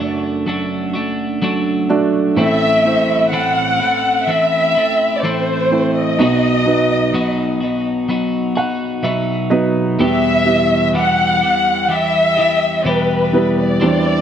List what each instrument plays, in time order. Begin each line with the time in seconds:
Already playing: felt piano F#1 F#2 A3 D4 F#4 A4 D5, violin section D5
0.00 clean electric guitar A3 D4 F#4
0.46 clean electric guitar F#3 A3 D4 F#4
0.94 clean electric guitar A3 D4 F#4
1.42 clean electric guitar F#3 A3 D4 F#4
1.89 felt piano A3 D4 F#4 D5
2.36 felt piano A1 A2 A3 C4 E4 C5, clean electric guitar A2 E3 A3 C4 E4, violin section E5
2.85 felt piano A3 C4 E4 C5
3.32 clean electric guitar A2 E3 A3 C4 E4, violin section F#5
3.80 clean electric guitar A3 C4 E4
4.27 clean electric guitar E3 A3 C4 E4, violin section E5
4.75 clean electric guitar A3 C4 E4
5.19 violin section D5
5.23 clean electric guitar A2 E3 A3 C4 E4, violin section C5
5.71 felt piano A3 C4 E4 C5
5.95 violin section D#5
6.18 felt piano B1 B2 F#3 B3 D#4 B4, clean electric guitar B2 F#3 B3 D#4 F#4
6.65 felt piano F#3 B3 D#4 B4
7.13 clean electric guitar B2 F#3 B3 D#4 F#4
7.61 clean electric guitar B3 D#4 F#4
8.09 clean electric guitar F#3 B3 D#4 F#4
8.55 clean electric guitar B3 D#4 F#4, felt piano F#5
9.03 clean electric guitar B2 F#3 B3 D#4 F#4, felt piano E5
9.50 felt piano F#3 B3 D#4 B4 D#5
9.99 clean electric guitar E2 B2 E3 G3 E4 G4, felt piano E2 E3 G3 B3 E4 B4, violin section E5
10.46 felt piano G3 B3 E4 B4
10.94 clean electric guitar E2 B2 E3 G3 E4 G4
10.98 violin section F#5
11.41 clean electric guitar E3 G3 E4 G4
11.89 clean electric guitar E3 G3 E4 G4
11.94 violin section E5
12.37 clean electric guitar E3 G3 E4 G4
12.84 clean electric guitar E2 B2 E3 G3 E4 G4
12.89 violin section B4
13.33 felt piano G3 B3 E4 B4
13.62 violin section D5
13.80 felt piano E2 E3 G3 D4 E4 C5, clean electric guitar E3 C4 D4 G4